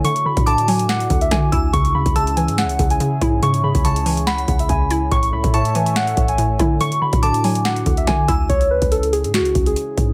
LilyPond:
<<
  \new Staff \with { instrumentName = "Synth bell" } { \time 4/4 \key cis \phrygian \tempo 4 = 142 r4 d'''2~ d'''8 e'''8 | r4 e'''4 r2 | r4 cis'''4 b''2 | r4 cis'''4 r2 |
r4 d'''2~ d'''8 e'''8 | r1 | }
  \new Staff \with { instrumentName = "Synth keys" } { \time 4/4 \key cis \phrygian cis'''8 b''8 a''8 gis''8 fis''8. e''16 gis''4 | cis'''8 b''8 a''8 gis''8 fis''8. gis''4~ gis''16 | cis'''8 b''8 a''8 gis''8 fis''8. e''16 gis''4 | cis'''8 b''8 a''8 gis''8 fis''8. gis''4~ gis''16 |
cis'''8 b''8 a''8 gis''8 fis''8. e''16 gis''4 | cis''8 b'8 a'8 gis'8 fis'8. gis'4~ gis'16 | }
  \new Staff \with { instrumentName = "Analog synth pad" } { \time 4/4 \key cis \phrygian << { <d d' fis'>1 | <cis cis' gis'>1~ | <cis cis' gis'>1 | <a a' e''>1 |
<d d' fis'>1 | <cis cis' gis'>1 | } \\ { e'1~ | e'1~ | e'1 | cis''1 |
e'1 | e'1 | } >> }
  \new Staff \with { instrumentName = "Synth pluck" } { \clef bass \time 4/4 \key cis \phrygian d8 d8 d8 fis4 d8 d8 e'8 | cis8 cis8 cis8 e4 cis8 cis8 e'8 | cis8 cis8 cis8 e4 cis8 cis8 e'8 | a,8 a,8 a,8 e4 a,8 a,8 e'8 |
d8 d8 d8 fis4 d8 d8 e'8 | r1 | }
  \new Staff \with { instrumentName = "808-style bass" } { \clef bass \time 4/4 \key cis \phrygian d16 r8 a,4.~ a,16 d,8 d8 d,8 | cis,8 d,16 cis,4 gis,16. cis,16. cis,8 r8 gis,8~ | gis,8. cis,4.~ cis,16 cis,8 cis,4 | a,,8 cis,16 a,4.~ a,16 a,,4 d8~ |
d16 r8 a,4.~ a,16 d,8 d8 d,8 | cis,8 d,16 cis,4 gis,16. cis,16. cis,8 r8 gis,8 | }
  \new DrumStaff \with { instrumentName = "Drums" } \drummode { \time 4/4 hh16 hh8 <hh bd>16 hh16 hh16 hho16 hh16 <hh sn>16 hh16 <hh bd>16 hh16 <hh bd sn>8 <hh bd>8 | <hh bd>16 hh8 <hh bd>16 hh16 hh16 hh16 hh16 <hh sn>16 hh16 <hh bd>16 hh16 hh8 <hh bd>8 | hh16 hh8 <hh bd>16 hh16 hh16 hho16 hh16 <hh sn>16 hh16 <hh bd>16 hh16 <hh bd>8 hh8 | <hh bd>16 hh8 <hh bd>16 hh16 hh16 hh16 hh16 <hh sn>16 hh16 <hh bd>16 hh16 hh8 <hh bd>8 |
hh16 hh8 <hh bd>16 hh16 hh16 hho16 hh16 <hh sn>16 hh16 <hh bd>16 hh16 <hh bd sn>8 <hh bd>8 | <hh bd>16 hh8 <hh bd>16 hh16 hh16 hh16 hh16 <hh sn>16 hh16 <hh bd>16 hh16 hh8 <hh bd>8 | }
>>